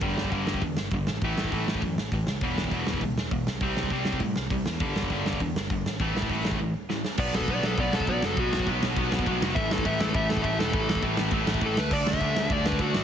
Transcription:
<<
  \new Staff \with { instrumentName = "Lead electric guitar" } { \time 4/4 \key a \lydian \tempo 4 = 202 r1 | r1 | r1 | r1 |
r1 | r1 | d''8 a'8 d''8 a'8 d''8 a'8 d''8 a'8 | fis'4 r2. |
e''8 a'8 e''8 a'8 e''8 a'8 e''8 a'8 | a'4 r2 a'8 b'8 | d''8 e''4. d''8 b'8 fis'4 | }
  \new Staff \with { instrumentName = "Distorted electric guitar" } { \clef bass \time 4/4 \key a \lydian <g, d g>4 <g, d g>4 <g, d>8 r8 <g, d>8 r8 | <a, e a>4 <a, e a>4 <a, e>8 r8 <a, e>8 r8 | <e, b, e>4 <e, b, e>4 <e, b,>8 r8 <e, b,>8 r8 | <c g c'>4 <c g c'>4 <c g>8 r8 <c g>8 r8 |
<g, d g>4 <g, d g>4 <g, d>8 r8 <g, d>8 r8 | <a, e a>4 <a, e a>4 <a, e>8 r8 <a, e>8 r8 | <b, fis b>4 <b, fis b>4 <b, fis b>4 <b, fis b>4 | <b, fis b>4 <b, fis b>4 <b, fis b>4 <b, fis b>4 |
<a, e a>4 <a, e a>4 <a, e a>4 <a, e a>4 | <a, e a>4 <a, e a>4 <a, e a>4 <a, e a>8 r8 | <d a d'>4 <d a d'>4 <d a d'>4 <d a d'>4 | }
  \new Staff \with { instrumentName = "Picked electric bass" } { \clef bass \time 4/4 \key a \lydian g,,8 g,,8 g,,8 g,,8 e,8 g,,8 g,,8 a,,8 | a,,8 a,,8 a,,8 a,,8 fis,8 a,,8 a,,8 cis,8 | e,,8 e,,8 e,,8 e,,8 cis,8 e,,8 e,,8 c,8 | c,8 c,8 c,8 c,8 a,8 c,8 c,8 e,8 |
g,,8 g,,8 g,,8 g,,8 e,8 g,,8 g,,8 a,,8 | a,,8 a,,8 a,,8 a,,8 r2 | b,,8 b,,8 b,,8 b,,8 b,,8 b,,8 b,,8 fis,,8 | b,,8 b,,8 b,,8 b,,8 b,,8 b,,8 b,,8 fis,,8 |
a,,8 a,,8 a,,8 a,,8 a,,8 a,,8 a,,8 e,,8 | a,,8 a,,8 a,,8 a,,8 a,,8 a,,8 a,,8 d,8 | d,8 d,8 d,8 d,8 d,8 d,8 d,8 a,,8 | }
  \new DrumStaff \with { instrumentName = "Drums" } \drummode { \time 4/4 <hho bd>8 sn16 bd16 <hho bd>8 sn16 bd16 <hho bd>8 sn8 <hho bd>8 sn8 | <hho bd>8 sn16 bd16 <hho bd>8 sn16 bd16 <hho bd>8 sn8 <hho bd>8 sn8 | <hho bd>8 sn16 bd16 <hho bd>8 sn16 bd16 <hho bd>8 sn8 <hho bd>8 sn8 | <hho bd>8 sn16 bd16 <hho bd>8 sn16 bd16 <hho bd>8 sn8 <hho bd>8 sn8 |
<hho bd>8 sn16 bd16 <hho bd>8 sn16 bd16 <hho bd>8 sn8 <hho bd>8 sn8 | <hho bd>8 sn16 bd16 <hho bd>8 sn16 bd16 r4 sn8 sn8 | <cymc bd>8 sn16 bd16 <bd cymr>8 sn8 <bd cymr>8 sn16 bd16 <bd cymr>8 sn8 | <bd cymr>8 sn16 bd16 <bd cymr>8 sn8 <bd cymr>8 sn16 bd16 <bd cymr>8 sn8 |
<bd cymr>8 sn16 bd16 <bd cymr>8 sn8 <bd cymr>8 sn16 bd16 <bd cymr>8 sn8 | <bd cymr>8 sn16 bd16 <bd cymr>8 sn8 <bd cymr>8 sn16 bd16 <bd cymr>8 sn8 | <cymc bd>8 sn16 bd16 <bd cymr>8 sn8 <bd cymr>8 sn16 bd16 <bd cymr>8 sn8 | }
>>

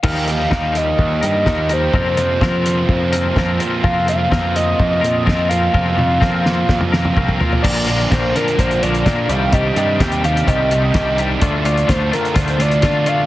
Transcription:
<<
  \new Staff \with { instrumentName = "Analog synth lead" } { \time 4/4 \key f \mixolydian \tempo 4 = 127 f''8 f''4 ees''2 c''8~ | c''2.~ c''8 r8 | f''8 f''4 ees''2 f''8~ | f''2.~ f''8 r8 |
d''8 d''8 c''8 bes'8 c''8 d''4 f''8 | ees''4 g''8 f''8 ees''4. r8 | d''8 d''8 c''8 bes'8 c''8 d''4 f''8 | }
  \new Staff \with { instrumentName = "Clean electric guitar" } { \time 4/4 \key f \mixolydian <ees f g ees' bes'>4 <ees f g ees' bes'>4. <g ees' bes'>8 <f g ees' bes'>8 <g ees' bes'>8 | <f c' f' bes'>4 <f c' f' bes'>4. <c' f' bes'>8 <f c' f' bes'>8 <c' f' bes'>8 | <f c' f' bes'>4 <f c' f' bes'>4. <c' f' bes'>8 <f c' f' bes'>8 <c' f' bes'>8 | <f c' f' bes'>4 <f c' f' bes'>4. <c' f' bes'>8 <f c' f' bes'>8 <c' f' bes'>8 |
<bes, d f bes d' bes'>8 <bes, d f bes d' bes'>8 <bes, d f bes d' bes'>8 <bes, d f bes d' bes'>8 <bes, d f bes d' bes'>8 <bes, d f bes d' bes'>8 <bes, d f bes d' bes'>8 <c ees g d' g'>8 | <c ees g d' g'>8 <c ees g d' g'>8 <c ees g d' g'>8 <c ees g d' g'>8 <c ees g d' g'>8 <c ees g d' g'>8 <c ees g d' g'>8 <c ees g d' g'>8 | <d a d' f'>8 <d a d' f'>8 <d a d' f'>8 <d a d' f'>8 <d a d' f'>8 <d a d' f'>8 <d a d' f'>8 <d a d' f'>8 | }
  \new Staff \with { instrumentName = "Distorted electric guitar" } { \time 4/4 \key f \mixolydian <ees bes ees' g'>8 <bes ees' g'>8 <ees bes ees' g'>4. <bes ees' g'>8 <ees bes ees' g'>8 <bes ees' g'>8 | <f, c f bes c' f'>8 <f bes c' f'>8 <f, c f bes c' f'>4. <f bes c' f'>8 <f bes c' f'>8 <f bes c' f'>8 | <f, c f bes c' f'>8 <f bes c' f'>8 <f, c f bes c' f'>4. <f bes c' f'>8 <f bes c' f'>8 <f bes c' f'>8 | <f, c f bes c' f'>8 <f bes c' f'>8 <f, c f bes c' f'>4. <f bes c' f'>8 <f bes c' f'>8 <f bes c' f'>8 |
<bes, d bes d' f'>8 <bes, d bes d' f'>8 <bes, d bes d' f'>8 <bes, d bes d' f'>8 <bes, d bes d' f'>8 <bes, d bes d' f'>8 <bes, d bes d' f'>8 <c ees g c' g'>8 | <c ees g c' g'>8 <c ees g c' g'>8 <c ees g c' g'>8 <c ees g c' g'>8 <c ees g c' g'>8 <c ees g c' g'>8 <c ees g c' g'>8 <c ees g c' g'>8 | <d a d' f'>8 <d a d' f'>8 <d a d' f'>8 <d a d' f'>8 <d a d' f'>8 <d a d' f'>8 <d a d' f'>8 <d a d' f'>8 | }
  \new Staff \with { instrumentName = "Picked electric bass" } { \clef bass \time 4/4 \key f \mixolydian ees,4 ees,4 ees,8 g,8 ees,4 | f,8 f,8 f,4 f,4 f,8 r8 | f,4 f,4 f,8 bes,8 f,4 | f,8 f,8 f,4 f,4 c,8 r8 |
bes,,4 bes,,8 r8 bes,,8 bes,,8 bes,8 c,8~ | c,8 g,8 ees,4 c,4 c,4 | d,4 d,8 r8 d,8 d,8 d4 | }
  \new DrumStaff \with { instrumentName = "Drums" } \drummode { \time 4/4 <cymc bd>8 hh8 <bd sn>8 hh8 bd8 hh8 <bd sn>8 hh8 | bd8 hh8 <bd sn>8 <hh sn>8 bd8 hh8 <bd sn>8 hh8 | bd8 hh8 <bd sn>8 hh8 bd8 hh8 <bd sn>8 hh8 | bd8 tommh8 <bd sn>8 sn8 <bd sn>16 toml16 sn16 toml16 bd16 bd16 tomfh16 tomfh16 |
<cymc bd>8 hh16 hh16 <hh bd sn>8 <hh sn>16 hh16 <hh bd>16 hh16 hh16 hh16 <hh bd sn>8 hh8 | <hh bd>8 hh8 <hh bd sn>16 hh16 hh16 hh16 <hh bd>8 hh8 <hh bd sn>8 hh8 | <hh bd>8 hh16 hh16 <hh bd sn>8 <hh sn>16 hh16 <hh bd>16 hh16 hh16 hh16 <hh bd sn>8 hh8 | }
>>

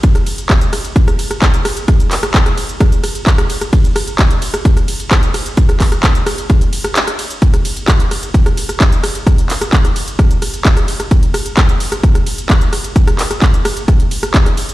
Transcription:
\new DrumStaff \with { instrumentName = "Drums" } \drummode { \time 4/4 \tempo 4 = 130 <hh bd cymr>16 <hh ss>16 <hho cymr>16 hh16 <hc hh bd cymr ss>16 hh16 <hho cymr ss>16 hh16 <hh bd cymr>16 <hh ss>16 <hho cymr>16 <hh ss>16 <hc hh bd cymr>16 hh16 <hho cymr ss>16 hh16 | <hh bd cymr ss>16 hh16 <hc hho cymr>16 <hh ss>16 <hc hh bd cymr>16 <hh ss>16 <hho cymr>16 hh16 <hh bd cymr ss>16 hh16 <hho cymr ss>16 hh16 <hc hh bd cymr>16 <hh ss>16 <hho cymr>16 <hh ss>16 | <hh bd cymr>16 hh16 <hho cymr ss>16 hh16 <hc hh bd cymr ss>16 hh16 <hho cymr>16 <hh ss>16 <hh bd cymr>16 <hh ss>16 <hho cymr>16 hh16 <hc hh bd cymr ss>16 hh16 <hho cymr ss>16 hh16 | <hh bd cymr>16 <hh ss>16 <hc hho bd cymr>16 <hh ss>16 <hc hh bd cymr>16 hh16 <hho cymr ss>16 hh16 <hh bd cymr ss>16 hh16 <hho cymr>16 <hh ss>16 <hc hh cymr>16 <hh ss>16 <hho cymr>16 hh16 |
<hh bd cymr>16 <hh ss>16 <hho cymr>16 hh16 <hc hh bd cymr ss>16 hh16 <hho cymr ss>16 hh16 <hh bd cymr>16 <hh ss>16 <hho cymr>16 <hh ss>16 <hc hh bd cymr>16 hh16 <hho cymr ss>16 hh16 | <hh bd cymr ss>16 hh16 <hc hho cymr>16 <hh ss>16 <hc hh bd>16 <hh ss>16 <hho cymr>16 hh16 <hh bd cymr ss>16 hh16 <hho cymr ss>16 hh16 <hc hh bd cymr>16 <hh ss>16 <hho cymr>16 <hh ss>16 | <hh bd cymr>16 hh16 <hho cymr ss>16 hh16 <hc hh bd cymr ss>16 hh16 <hho cymr>16 <hh ss>16 <hh bd cymr>16 <hh ss>16 <hho cymr>16 hh16 <hc hh bd cymr ss>16 hh16 <hho cymr ss>16 hh16 | <hh bd cymr>16 <hh ss>16 <hc hho cymr>16 <hh ss>16 <hc hh bd cymr>16 hh16 <hho cymr ss>16 hh16 <hh bd cymr ss>16 hh16 <hho cymr>16 <hh ss>16 <hc hh bd cymr>16 <hh ss>16 <hho cymr>16 hh16 | }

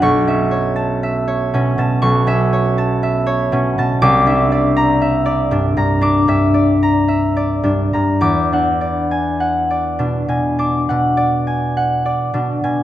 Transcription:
<<
  \new Staff \with { instrumentName = "Harp" } { \time 4/4 \key a \mixolydian \tempo 4 = 59 << { cis'''1 | \key e \minor d'''1 | d'''1 | } \\ { cis''16 e''16 cis''16 a''16 e''16 cis''16 b,16 a''16 cis'''16 e''16 cis''16 a''16 e''16 cis''16 b,16 a''16 | r16 e''16 d''16 bes''16 e''16 d''16 g,16 bes''16 d'''16 e''16 d''16 bes''16 e''16 d''16 g,16 bes''16 | r16 fis''16 d''16 gis''16 fis''16 d''16 b,16 gis''16 d'''16 fis''16 d''16 gis''16 fis''16 d''16 b,16 gis''16 | } >> }
  \new Staff \with { instrumentName = "Harp" } { \clef bass \time 4/4 \key a \mixolydian b,,16 cis'4~ cis'16 cis'16 b,16 b,,16 cis'4~ cis'16 cis'16 b,16 | \key e \minor c,16 d'4~ d'16 d'16 g,16 d'16 g,4~ g,16 d'16 g,16 | e,16 d'4~ d'16 d'16 b,16 d'16 b,4~ b,16 d'16 b,16 | }
>>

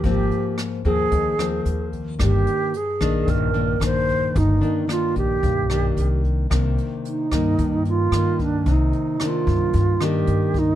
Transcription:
<<
  \new Staff \with { instrumentName = "Alto flute" } { \time 4/4 \key c \minor \tempo 4 = 111 g'4 r8 aes'2 r8 | g'4 aes'4 bes'4 c''4 | ees'4 f'8 g'2 r8 | r4 ees'4. f'4 d'8 |
ees'4 f'4. g'4 ees'8 | }
  \new Staff \with { instrumentName = "Nylon-string guitar" } { \time 4/4 \key c \minor << { <f bes c'>4. <f bes c'>4 <f bes c'>4. | <ees bes d'>4 r8 <ees bes d'>4 <ees bes d'>8 <ees bes d'>4~ | <ees bes d'>8 <ees bes d'>8 <ees bes d'>4. <ees bes d'>4. | <ees bes d'>4. <ees bes>4. <ees bes>4~ |
<ees bes>4 <ees bes d'>4. <ees bes d'>4. | } \\ { aes,2 ees2 | g,2 g,2 | g,2 g,4 r4 | c2 g,2 |
c2 g,2 | } >> }
  \new Staff \with { instrumentName = "Upright bass" } { \clef bass \time 4/4 \key c \minor aes,,8 r4 ees,8 ees,4 ees,4 | g,,8 r4 bes,,8 bes,,4 bes,,4 | g,,8 r4 bes,,8 b,,4 c,4 | c,8 r4 g,8 g,4 g,4 |
c,8 r4 g,8 g,4 g,4 | }
  \new DrumStaff \with { instrumentName = "Drums" } \drummode { \time 4/4 <hh bd>8 hh8 <hh ss>8 <hh bd>8 <hh bd>8 <hh ss>8 hh8 <hh bd>8 | <hh bd ss>8 hh8 hh8 <hh bd ss>8 <hh bd>8 hh8 <hh ss>8 <hh bd>8 | <hh bd>8 hh8 <hh ss>8 <hh bd>8 <hh bd>8 <hh ss>8 hh8 <hh bd>8 | <hh bd ss>8 hh8 hh8 <hh bd ss>8 <hh bd>8 hh8 <hh ss>8 <hh bd>8 |
<hh bd>8 hh8 <hh ss>8 <hh bd>8 <hh bd>8 <hh ss>8 hh8 <hh bd>8 | }
>>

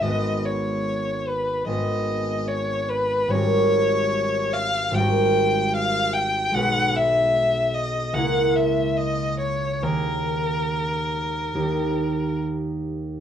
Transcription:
<<
  \new Staff \with { instrumentName = "Violin" } { \time 4/4 \key gis \minor \tempo 4 = 73 dis''8 cis''4 b'8 dis''4 cis''8 b'8 | cis''4. eis''8 g''4 eis''8 g''8 | fis''8 e''4 dis''8 fis''8 e''8 dis''8 cis''8 | ais'2. r4 | }
  \new Staff \with { instrumentName = "Harp" } { \time 4/4 \key gis \minor <gis,, gis b b'>2 <gis,, gis b b'>2 | <gis,, g cis' bes'>2 <gis,, g cis' bes'>2 | <b,, gis dis' b'>2 <cis, ais e' ais'>2 | <dis, ais dis' gis'>2 <dis, ais dis' g'>2 | }
>>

